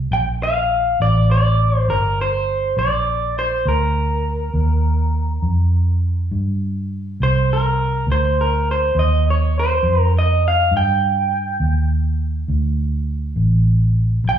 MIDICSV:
0, 0, Header, 1, 3, 480
1, 0, Start_track
1, 0, Key_signature, -2, "minor"
1, 0, Tempo, 588813
1, 91, Time_signature, 12, 3, 24, 8
1, 11727, End_track
2, 0, Start_track
2, 0, Title_t, "Clean electric guitar"
2, 0, Program_c, 0, 27
2, 108, Note_on_c, 0, 79, 97
2, 171, Note_off_c, 0, 79, 0
2, 354, Note_on_c, 0, 77, 87
2, 827, Note_off_c, 0, 77, 0
2, 830, Note_on_c, 0, 74, 86
2, 1062, Note_off_c, 0, 74, 0
2, 1072, Note_on_c, 0, 74, 88
2, 1447, Note_off_c, 0, 74, 0
2, 1447, Note_on_c, 0, 72, 88
2, 1545, Note_off_c, 0, 72, 0
2, 1548, Note_on_c, 0, 70, 71
2, 1791, Note_off_c, 0, 70, 0
2, 1805, Note_on_c, 0, 72, 88
2, 2269, Note_off_c, 0, 72, 0
2, 2272, Note_on_c, 0, 74, 83
2, 2758, Note_off_c, 0, 74, 0
2, 2762, Note_on_c, 0, 72, 74
2, 2999, Note_off_c, 0, 72, 0
2, 3004, Note_on_c, 0, 70, 67
2, 4883, Note_off_c, 0, 70, 0
2, 5895, Note_on_c, 0, 72, 76
2, 6104, Note_off_c, 0, 72, 0
2, 6139, Note_on_c, 0, 70, 74
2, 6569, Note_off_c, 0, 70, 0
2, 6617, Note_on_c, 0, 72, 77
2, 6825, Note_off_c, 0, 72, 0
2, 6856, Note_on_c, 0, 70, 68
2, 7087, Note_off_c, 0, 70, 0
2, 7102, Note_on_c, 0, 72, 75
2, 7326, Note_off_c, 0, 72, 0
2, 7330, Note_on_c, 0, 75, 75
2, 7541, Note_off_c, 0, 75, 0
2, 7585, Note_on_c, 0, 73, 76
2, 7811, Note_off_c, 0, 73, 0
2, 7821, Note_on_c, 0, 72, 76
2, 8156, Note_off_c, 0, 72, 0
2, 8156, Note_on_c, 0, 70, 76
2, 8250, Note_off_c, 0, 70, 0
2, 8303, Note_on_c, 0, 75, 81
2, 8507, Note_off_c, 0, 75, 0
2, 8541, Note_on_c, 0, 77, 85
2, 8768, Note_off_c, 0, 77, 0
2, 8778, Note_on_c, 0, 79, 85
2, 9685, Note_off_c, 0, 79, 0
2, 11648, Note_on_c, 0, 79, 94
2, 11727, Note_off_c, 0, 79, 0
2, 11727, End_track
3, 0, Start_track
3, 0, Title_t, "Fingered electric bass"
3, 0, Program_c, 1, 33
3, 90, Note_on_c, 1, 34, 81
3, 792, Note_off_c, 1, 34, 0
3, 815, Note_on_c, 1, 33, 80
3, 1516, Note_off_c, 1, 33, 0
3, 1534, Note_on_c, 1, 31, 67
3, 2236, Note_off_c, 1, 31, 0
3, 2255, Note_on_c, 1, 34, 75
3, 2958, Note_off_c, 1, 34, 0
3, 2978, Note_on_c, 1, 38, 74
3, 3680, Note_off_c, 1, 38, 0
3, 3698, Note_on_c, 1, 39, 77
3, 4400, Note_off_c, 1, 39, 0
3, 4421, Note_on_c, 1, 41, 67
3, 5121, Note_off_c, 1, 41, 0
3, 5147, Note_on_c, 1, 43, 73
3, 5845, Note_off_c, 1, 43, 0
3, 5870, Note_on_c, 1, 36, 77
3, 6566, Note_off_c, 1, 36, 0
3, 6578, Note_on_c, 1, 38, 83
3, 7279, Note_off_c, 1, 38, 0
3, 7295, Note_on_c, 1, 39, 70
3, 7997, Note_off_c, 1, 39, 0
3, 8012, Note_on_c, 1, 41, 79
3, 8714, Note_off_c, 1, 41, 0
3, 8734, Note_on_c, 1, 43, 74
3, 9435, Note_off_c, 1, 43, 0
3, 9456, Note_on_c, 1, 39, 78
3, 10155, Note_off_c, 1, 39, 0
3, 10176, Note_on_c, 1, 38, 72
3, 10874, Note_off_c, 1, 38, 0
3, 10890, Note_on_c, 1, 33, 75
3, 11590, Note_off_c, 1, 33, 0
3, 11607, Note_on_c, 1, 34, 82
3, 11727, Note_off_c, 1, 34, 0
3, 11727, End_track
0, 0, End_of_file